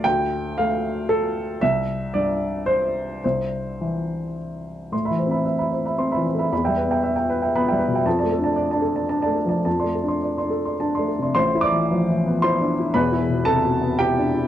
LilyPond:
<<
  \new Staff \with { instrumentName = "Upright piano" } { \time 3/4 \key a \minor \tempo 4 = 114 g''4 f''4 a'4 | e''4 d''4 c''4 | c''2 r4 | c'''16 <e'' b''>16 c''16 <e'' b''>16 e''16 <e'' b''>16 c''16 <e'' b''>16 c'''16 <e'' b''>16 c''16 <e'' b''>16 |
b''16 <e'' g''>16 b'16 <e'' g''>16 e''16 <e'' g''>16 b'16 <e'' g''>16 b''16 <e'' g''>16 b'16 <e'' g''>16 | a''16 <d'' a''>16 a'16 <d'' a''>16 d''16 <d'' a''>16 a'16 <d'' a''>16 a''16 <d'' a''>16 a'16 <d'' a''>16 | a''16 <d'' c'''>16 a'16 <d'' c'''>16 d''16 <d'' c'''>16 a'16 <d'' c'''>16 a''16 <d'' c'''>16 a'16 <d'' c'''>16 | <c'' c'''>8 <d'' d'''>4. <c'' c'''>4 |
<b' b''>4 <a' a''>4 <g' g''>4 | }
  \new Staff \with { instrumentName = "Upright piano" } { \clef bass \time 3/4 \key a \minor <d, a,>4 a2 | c,4 g,2 | c,4 e2 | \tuplet 3/2 { a,8 e8 c'8 } r4 \tuplet 3/2 { c'8 e8 a8 } |
\tuplet 3/2 { e,8 g8 b8 } r4 \tuplet 3/2 { b8 g8 b,8 } | \tuplet 3/2 { f,8 a8 d'8~ d'8 d'4 d'8 a8 f8 } | \tuplet 3/2 { f,8 a8 d'8~ d'8 d'4 d'8 a8 c8 } | \tuplet 3/2 { <a,, a,>8 e'8 e8 f8 e8 b8 e'8 d'8 e'8 } |
\tuplet 3/2 { <e,, e,>8 e'8 b,8 c8 b,8 b8 e'8 d'8 e'8 } | }
>>